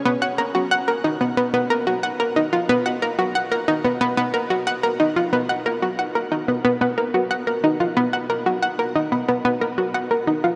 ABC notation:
X:1
M:4/4
L:1/16
Q:1/4=91
K:Blyd
V:1 name="Synth arpeggio sound"
B, f A F f A D B, B, B, A F f A D E | B, f A F f A D B, B, B, A F f A D E | B, f A F f A D B, B, B, A F f A D E | B, f A F f A D B, B, B, A F f A D E |]